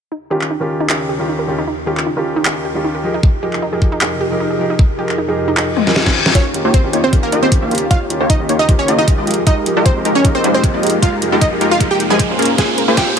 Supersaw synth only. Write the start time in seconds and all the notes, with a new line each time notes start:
6.35 A#3 D#4 F4 G4 C#5
6.65 A#3 D#4 F4 G4 C#5
6.93 A#3 D#4 F4 G4 C#5
7.13 A#3 D#4 F4 G4 C5
7.32 A#3 D#4 F4 G4 D#5
7.62 A#3 D#4 F4 G4 F5
7.91 A#3 D#4 F4 G4 C#5
8.20 A#3 D#4 F4 G4 C#5
8.49 A#3 D#4 F4 G4 C#5
8.69 A#3 D#4 F4 G4 C5
8.88 A#3 D#4 F4 G4 D#5
9.18 G#3 D#4 F4 G4 D#5
9.47 G#3 D#4 F4 G4 A#4
9.77 G#3 D#4 F4 G4 A#4
10.05 G#3 D#4 F4 G4 A#4
10.25 G#3 D#4 F4 G4 A#4
10.44 G#3 D#4 F4 G4 C5
10.74 G#3 D#4 F4 G4 D#5
11.02 G#3 D#4 F4 G4 A#4
11.32 G#3 D#4 F4 G4 A#4
11.61 G#3 D#4 F4 G4 A#4
11.80 G#3 D#4 F4 G4 A#4
12.10 G#3 D#4 F4 G4 C5
12.39 A#3 C#4 F4 G#4 A#4
12.58 A#3 C#4 F4 G#4 C5
12.88 A#3 C#4 F4 G#4 C5